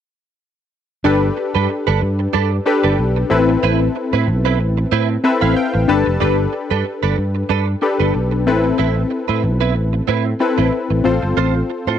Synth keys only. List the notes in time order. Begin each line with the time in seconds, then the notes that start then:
1.04 D4 G4 A4 B4
2.66 D4 G4 A4 B4
3.30 C4 E4 A4 B4
5.24 C4 E4 A4 B4 E5
5.42 F5
5.56 G5
5.88 D4 G4 A4 B4 A5
6.20 D4 G4 A4 B4
7.82 D4 G4 A4 B4
8.47 C4 E4 A4 B4
10.40 C4 E4 A4 B4
11.04 C4 F4 A4 C5